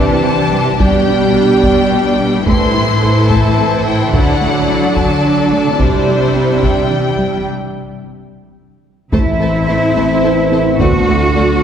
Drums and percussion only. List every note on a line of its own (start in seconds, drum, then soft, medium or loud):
0.80 taiko medium
1.63 taiko medium
2.46 taiko medium
3.30 taiko medium
4.13 taiko medium
4.96 taiko medium
5.80 taiko medium
6.63 taiko medium
9.12 taiko medium
10.79 taiko medium